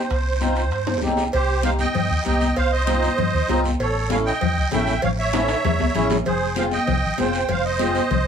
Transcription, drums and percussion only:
0.10 high timbale medium
0.10 long guiro medium
0.41 high conga medium
0.41 high timbale medium
0.41 short guiro medium
0.56 high timbale medium
0.56 short guiro medium
0.71 high timbale medium
0.71 long guiro medium
0.87 high conga medium
0.87 high timbale medium
0.97 low timbale medium
1.02 high conga medium
1.02 short guiro medium
1.07 low timbale medium
1.17 low timbale medium
1.17 short guiro medium
1.32 cowbell loud
1.32 long guiro medium
1.48 high conga soft
1.63 cowbell medium
1.63 high conga loud
1.63 short guiro medium
1.79 high conga medium
1.79 short guiro medium
1.94 cowbell medium
1.94 high conga soft
1.94 low conga medium
1.94 long guiro medium
2.25 cowbell medium
2.25 high conga medium
2.25 short guiro medium
2.41 high conga medium
2.41 short guiro medium
2.56 cowbell loud
2.56 long guiro medium
2.72 high conga soft
2.87 cowbell medium
2.87 high conga loud
2.87 short guiro medium
3.03 high conga medium
3.03 short guiro medium
3.18 cowbell medium
3.18 high conga soft
3.18 low conga medium
3.18 long guiro medium
3.49 cowbell medium
3.49 high conga loud
3.49 low timbale medium
3.49 short guiro medium
3.64 high conga medium
3.64 short guiro medium
3.80 cowbell loud
3.80 long guiro medium
3.95 high conga soft
4.10 cowbell medium
4.10 high conga loud
4.10 short guiro medium
4.27 short guiro medium
4.41 cowbell medium
4.41 high conga soft
4.41 low conga medium
4.41 long guiro medium
4.71 cowbell medium
4.71 high conga medium
4.71 low conga medium
4.71 low timbale medium
4.71 short guiro medium
4.87 high conga medium
4.87 short guiro medium
5.02 cowbell loud
5.02 low conga medium
5.02 long guiro medium
5.18 high conga soft
5.33 cowbell medium
5.33 high conga loud
5.33 high timbale medium
5.33 short guiro medium
5.48 high timbale loud
5.48 short guiro medium
5.64 cowbell medium
5.64 high conga soft
5.64 low conga loud
5.64 low timbale medium
5.64 long guiro medium
5.80 high conga medium
5.80 low timbale medium
5.94 cowbell medium
5.94 low conga medium
5.94 low timbale medium
5.94 short guiro medium
6.10 low conga medium
6.10 low timbale medium
6.10 short guiro medium
6.25 cowbell loud
6.25 low conga medium
6.25 long guiro medium
6.41 high conga soft
6.56 cowbell medium
6.56 high conga loud
6.56 short guiro medium
6.71 high conga medium
6.71 short guiro medium
6.87 cowbell medium
6.87 high conga soft
6.87 low conga medium
6.87 long guiro medium
7.18 cowbell medium
7.18 high conga medium
7.18 low timbale medium
7.18 short guiro medium
7.33 short guiro medium
7.48 cowbell loud
7.48 low conga medium
7.48 long guiro medium
7.64 high conga soft
7.79 cowbell medium
7.79 high conga loud
7.79 short guiro medium
7.95 high conga medium
7.95 short guiro medium
8.10 cowbell medium
8.10 high conga soft
8.10 low conga medium
8.10 long guiro medium

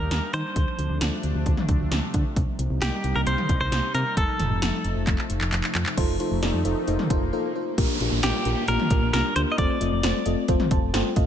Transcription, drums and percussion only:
0.11 snare loud
0.11 closed hi-hat medium
0.33 closed hi-hat medium
0.56 kick loud
0.56 closed hi-hat medium
0.79 closed hi-hat medium
1.01 snare loud
1.01 closed hi-hat medium
1.23 closed hi-hat medium
1.46 kick medium
1.46 closed hi-hat medium
1.57 mid tom medium
1.69 kick loud
1.69 closed hi-hat medium
1.92 snare loud
1.92 closed hi-hat medium
2.14 kick loud
2.14 closed hi-hat medium
2.36 kick loud
2.36 closed hi-hat medium
2.59 closed hi-hat medium
2.82 snare loud
2.82 closed hi-hat medium
3.04 closed hi-hat medium
3.27 closed hi-hat medium
3.38 mid tom medium
3.49 kick loud
3.49 closed hi-hat medium
3.72 snare loud
3.72 closed hi-hat medium
3.94 closed hi-hat medium
4.17 kick loud
4.17 closed hi-hat medium
4.39 closed hi-hat medium
4.39 mid tom medium
4.62 snare loud
4.62 closed hi-hat medium
4.85 closed hi-hat medium
5.07 kick medium
5.07 clap medium
5.07 closed hi-hat medium
5.19 clap medium
5.30 closed hi-hat medium
5.41 clap medium
5.52 clap medium
5.52 closed hi-hat medium
5.64 clap medium
5.75 clap loud
5.75 closed hi-hat medium
5.86 clap medium
5.98 kick loud
5.98 closed hi-hat medium
5.98 crash loud
6.20 closed hi-hat medium
6.43 snare loud
6.43 closed hi-hat medium
6.65 closed hi-hat medium
6.88 closed hi-hat medium
6.99 mid tom medium
7.10 kick loud
7.10 closed hi-hat medium
7.78 kick loud
7.78 closed hi-hat medium
7.78 crash loud
8.01 closed hi-hat medium
8.23 snare loud
8.23 closed hi-hat medium
8.45 closed hi-hat medium
8.68 closed hi-hat medium
8.79 mid tom loud
8.90 kick loud
8.90 closed hi-hat medium
9.14 snare loud
9.14 closed hi-hat medium
9.36 closed hi-hat medium
9.58 kick loud
9.58 closed hi-hat medium
9.81 closed hi-hat medium
10.03 snare loud
10.03 closed hi-hat medium
10.26 closed hi-hat medium
10.48 kick medium
10.48 closed hi-hat medium
10.60 mid tom loud
10.71 kick loud
10.71 closed hi-hat medium
10.94 snare loud
10.94 closed hi-hat medium
11.16 kick loud
11.16 closed hi-hat medium

